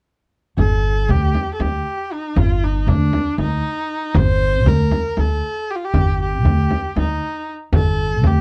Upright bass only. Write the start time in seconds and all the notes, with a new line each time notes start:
0.57 G1
1.08 D2
1.60 D2
2.36 G1
2.87 D2
3.38 D2
4.15 G1
4.66 D2
5.17 D2
5.94 G1
6.45 D2
6.96 D2
7.73 G1
8.23 D2